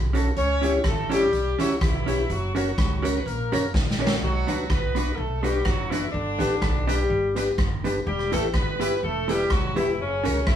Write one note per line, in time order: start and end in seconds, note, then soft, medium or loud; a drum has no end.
0.00 0.30 B1 loud
0.13 0.26 C#4 medium
0.13 0.31 C#4 loud
0.13 0.27 F#4 medium
0.13 0.31 F#4 medium
0.13 0.27 A4 medium
0.13 0.31 A4 loud
0.13 0.27 C#5 medium
0.13 closed hi-hat medium
0.36 0.78 C#2 loud
0.36 0.82 C#4 loud
0.36 0.82 C#5 loud
0.36 closed hi-hat medium
0.62 0.74 C#4 medium
0.62 0.79 C#4 medium
0.62 0.75 E4 medium
0.62 0.79 E4 medium
0.62 0.75 G4 medium
0.62 0.80 G4 loud
0.62 0.75 C#5 medium
0.62 closed hi-hat medium
0.84 1.26 A1 medium
0.84 1.12 A3 medium
0.84 1.12 A4 loud
0.84 kick loud
0.84 cross-stick loud
0.84 closed hi-hat medium
1.09 1.57 G3 medium
1.09 1.22 C#4 medium
1.09 1.27 C#4 medium
1.09 1.23 E4 loud
1.09 1.27 E4 medium
1.09 1.23 G4 medium
1.09 1.27 G4 loud
1.09 1.57 G4 loud
1.09 1.23 C#5 medium
1.09 closed hi-hat loud
1.32 1.55 B1 medium
1.32 closed hi-hat medium
1.58 1.78 C#2 medium
1.58 1.76 F#3 medium
1.58 1.71 C#4 medium
1.58 1.75 C#4 medium
1.58 1.71 E4 medium
1.58 1.76 E4 medium
1.58 1.76 F#4 loud
1.58 1.72 G4 medium
1.58 1.76 G4 loud
1.58 1.72 C#5 loud
1.58 cross-stick medium
1.58 closed hi-hat medium
1.77 1.82 F#3 medium
1.77 1.82 F#4 medium
1.81 2.22 B1 loud
1.81 2.30 E3 medium
1.81 1.87 E4 soft
1.81 2.30 E4 loud
1.81 1.87 G4 soft
1.81 kick loud
1.81 cross-stick loud
1.81 closed hi-hat medium
2.06 2.19 C#4 medium
2.06 2.23 C#4 loud
2.06 2.19 E4 medium
2.06 2.23 E4 medium
2.06 2.20 G4 medium
2.06 2.24 G4 loud
2.06 2.20 C#5 medium
2.06 closed hi-hat medium
2.30 2.70 F#1 loud
2.30 2.54 F#3 loud
2.30 2.54 F#4 loud
2.30 closed hi-hat medium
2.55 3.11 F#3 medium
2.55 2.67 C#4 medium
2.55 2.71 C#4 medium
2.55 2.67 F#4 medium
2.55 3.11 F#4 medium
2.55 2.72 F#4 medium
2.55 2.68 A#4 loud
2.55 2.72 A#4 loud
2.55 2.68 C#5 loud
2.55 closed hi-hat medium
2.78 3.19 C#2 loud
2.78 kick loud
2.78 cross-stick loud
2.78 closed hi-hat medium
3.02 3.15 C#4 medium
3.02 3.19 C#4 medium
3.02 3.15 F#4 medium
3.02 3.20 F#4 medium
3.02 3.16 A#4 medium
3.02 3.20 A#4 loud
3.02 3.16 C#5 loud
3.02 closed hi-hat loud
3.16 3.26 B3 medium
3.16 3.26 B4 medium
3.26 3.48 A#1 loud
3.26 3.74 A#3 medium
3.26 3.74 A#4 medium
3.26 closed hi-hat medium
3.52 3.71 F#1 medium
3.52 3.68 C#4 medium
3.52 3.64 C#4 medium
3.52 3.68 F#4 medium
3.52 3.64 F#4 medium
3.52 3.68 A#4 medium
3.52 3.64 A#4 medium
3.52 3.65 C#5 loud
3.52 closed hi-hat medium
3.74 4.15 A#1 medium
3.74 3.80 F#4 soft
3.74 3.80 A#4 soft
3.74 kick loud
3.74 snare medium
3.90 snare medium
3.99 4.11 C#4 medium
3.99 4.16 C#4 loud
3.99 4.12 F#4 medium
3.99 4.16 F#4 medium
3.99 4.12 A#4 medium
3.99 4.16 A#4 loud
3.99 4.12 C#5 loud
4.07 snare loud
4.22 4.44 B1 loud
4.22 4.67 F#3 loud
4.22 4.67 F#4 loud
4.47 4.67 C#2 medium
4.47 4.59 B3 medium
4.47 4.60 D4 medium
4.47 4.64 D4 loud
4.47 4.60 F#4 loud
4.47 4.64 F#4 medium
4.47 4.60 B4 loud
4.47 4.64 B4 loud
4.47 closed hi-hat medium
4.70 5.11 B1 medium
4.70 5.18 B3 loud
4.70 5.18 B4 loud
4.70 kick loud
4.70 cross-stick loud
4.95 5.07 B3 medium
4.95 5.12 D4 medium
4.95 5.08 D4 medium
4.95 5.12 F#4 medium
4.95 5.08 F#4 medium
4.95 5.12 B4 medium
4.95 5.09 B4 medium
4.95 closed hi-hat loud
5.16 5.59 B1 loud
5.16 5.43 A3 medium
5.16 5.43 A4 medium
5.43 5.65 G3 medium
5.43 5.55 B3 medium
5.43 5.55 D4 medium
5.43 5.60 D4 medium
5.43 5.56 F#4 medium
5.43 5.60 F#4 medium
5.43 5.65 G4 loud
5.43 5.56 B4 medium
5.43 5.60 B4 medium
5.43 closed hi-hat medium
5.65 6.07 F#1 medium
5.65 5.92 F#3 loud
5.65 5.92 F#4 loud
5.65 kick loud
5.65 cross-stick loud
5.90 6.13 E3 medium
5.90 6.04 B3 medium
5.90 6.07 D4 loud
5.90 6.04 D4 medium
5.90 6.13 E4 medium
5.90 6.08 F#4 medium
5.90 6.04 F#4 medium
5.90 6.08 B4 loud
5.90 6.05 B4 medium
5.90 closed hi-hat medium
6.12 6.36 G1 loud
6.12 6.83 D3 loud
6.12 6.83 D4 loud
6.39 6.58 A1 loud
6.39 6.51 B3 medium
6.39 6.55 D4 medium
6.39 6.52 D4 medium
6.39 6.55 G4 medium
6.39 6.52 G4 medium
6.39 6.56 B4 loud
6.39 6.52 B4 loud
6.39 closed hi-hat loud
6.61 7.03 B1 loud
6.61 kick loud
6.61 cross-stick loud
6.87 7.54 G3 medium
6.87 7.00 B3 medium
6.87 7.03 D4 medium
6.87 7.00 D4 loud
6.87 7.54 G4 medium
6.87 7.04 G4 medium
6.87 7.00 G4 medium
6.87 7.04 B4 loud
6.87 7.01 B4 medium
6.87 closed hi-hat loud
7.10 7.51 G1 loud
7.34 7.48 B3 medium
7.34 7.51 D4 medium
7.34 7.48 D4 medium
7.34 7.51 G4 medium
7.34 7.49 G4 medium
7.34 7.52 B4 medium
7.34 7.49 B4 medium
7.34 closed hi-hat loud
7.58 7.99 F#1 medium
7.58 kick loud
7.58 cross-stick loud
7.83 7.96 B3 medium
7.83 8.00 D4 medium
7.83 7.97 D4 medium
7.83 8.00 G4 medium
7.83 7.97 G4 medium
7.83 8.00 B4 loud
7.83 7.97 B4 medium
7.83 closed hi-hat medium
8.07 8.29 E1 loud
8.07 8.31 G3 loud
8.07 8.31 G4 loud
8.19 cross-stick medium
8.31 8.52 A1 loud
8.31 8.43 A3 loud
8.31 8.44 B3 medium
8.31 8.48 E4 loud
8.31 8.44 E4 medium
8.31 8.48 G4 medium
8.31 8.45 G4 loud
8.31 8.43 A4 loud
8.31 8.48 B4 loud
8.31 8.45 B4 loud
8.31 closed hi-hat medium
8.54 8.95 G1 loud
8.54 9.00 B3 loud
8.54 9.00 B4 loud
8.54 kick loud
8.54 cross-stick loud
8.79 8.92 B3 medium
8.79 8.96 E4 medium
8.79 8.93 E4 medium
8.79 8.96 G4 medium
8.79 8.93 G4 medium
8.79 8.96 B4 loud
8.79 8.93 B4 medium
8.79 closed hi-hat loud
9.03 9.44 E1 loud
9.03 9.30 A3 medium
9.03 9.30 A4 loud
9.27 9.52 G3 loud
9.27 9.40 B3 medium
9.27 9.44 E4 medium
9.27 9.41 E4 medium
9.27 9.44 G4 medium
9.27 9.41 G4 medium
9.27 9.52 G4 loud
9.27 9.45 B4 loud
9.27 9.42 B4 medium
9.27 closed hi-hat medium
9.50 9.99 E1 medium
9.50 9.78 F#3 medium
9.50 9.78 F#4 loud
9.50 kick loud
9.50 cross-stick loud
9.75 9.98 E3 medium
9.75 9.88 B3 medium
9.75 9.92 E4 loud
9.75 9.89 E4 medium
9.75 9.98 E4 medium
9.75 9.92 G4 medium
9.75 9.89 G4 medium
9.75 9.93 B4 loud
9.75 9.89 B4 medium
9.75 closed hi-hat medium
9.99 10.27 F#1 loud
9.99 10.45 C#3 medium
9.99 10.45 C#4 loud
10.23 10.44 C#2 medium
10.23 10.36 C#4 medium
10.23 10.40 C#4 loud
10.23 10.37 F#4 medium
10.23 10.41 F#4 medium
10.23 10.37 A#4 medium
10.23 10.41 A#4 loud
10.23 10.37 C#5 loud
10.23 closed hi-hat medium
10.47 10.56 A#1 medium
10.47 10.56 E3 medium
10.47 10.56 E4 medium
10.47 kick loud
10.47 cross-stick loud